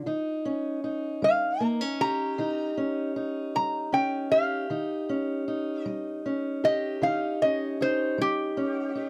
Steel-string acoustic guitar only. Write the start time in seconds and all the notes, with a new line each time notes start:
0.06 D#3 D#4
0.45 C#4
0.84 D#4
1.22 G3
1.60 A#3
1.81 C#4
2.01 G4
2.38 D#3 D#4
2.77 C#4
3.16 D#4
3.55 G3
3.92 C#4
4.31 G4
4.70 D#3 D#4
5.09 C#4
5.48 D#4
5.86 G3
6.26 C#4
6.64 G4
7.02 D#3 D#4
7.42 C#4
7.81 D#4
8.18 G3
8.57 C#4
8.95 D#4